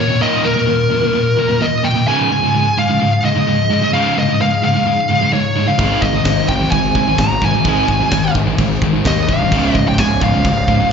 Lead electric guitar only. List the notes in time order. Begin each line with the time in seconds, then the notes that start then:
0.00 C#5
0.22 D#5
0.45 A#4
1.62 D#5
1.84 G5
2.08 G#5
2.79 F5
3.25 D#5
3.94 F5
4.19 D#5
4.42 F5
4.65 F5
5.33 C#5
5.68 F5
6.02 D#5
6.48 G5
6.71 G#5
7.20 A#5
7.43 G#5
9.07 D#5
9.29 F5
9.76 D#5
9.88 G5
9.99 G#5
10.24 F5